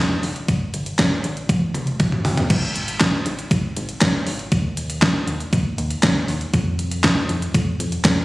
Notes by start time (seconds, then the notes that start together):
0.00 F2
0.23 F1, open hi-hat
0.36 closed hi-hat
0.48 G1, kick, closed hi-hat
0.74 G1, closed hi-hat
0.86 closed hi-hat
0.99 G1, kick, snare, clap, closed hi-hat
1.24 G#1, closed hi-hat
1.37 closed hi-hat
1.49 G1, kick, closed hi-hat, high tom
1.74 F1, closed hi-hat, mid tom
1.87 closed hi-hat
2.00 G1, kick, closed hi-hat, mid tom
2.12 mid tom
2.25 G1, floor tom, open hi-hat
2.37 closed hi-hat, floor tom
2.50 G#1, kick, closed hi-hat, crash
2.76 closed hi-hat
2.88 closed hi-hat
3.01 kick, snare, clap, closed hi-hat
3.26 G#1, closed hi-hat
3.39 closed hi-hat
3.51 G#1, kick, closed hi-hat
3.76 G#1, closed hi-hat
3.89 closed hi-hat
4.01 G#1, kick, snare, clap, closed hi-hat
4.27 G#1, open hi-hat
4.39 closed hi-hat
4.52 D#2, kick, closed hi-hat
4.77 closed hi-hat
4.90 closed hi-hat
5.02 kick, snare, clap, closed hi-hat
5.27 D#2, closed hi-hat
5.40 closed hi-hat
5.53 D#2, kick, closed hi-hat
5.78 D#2, closed hi-hat
5.91 closed hi-hat
6.03 D#2, kick, snare, clap, closed hi-hat
6.28 D#2, open hi-hat
6.41 closed hi-hat
6.54 F2, kick, closed hi-hat
6.79 closed hi-hat
6.91 closed hi-hat
7.04 kick, snare, clap, closed hi-hat
7.29 F2, closed hi-hat
7.42 closed hi-hat
7.54 F2, kick, closed hi-hat
7.79 F2, closed hi-hat
7.92 closed hi-hat
8.05 F2, kick, snare, clap, closed hi-hat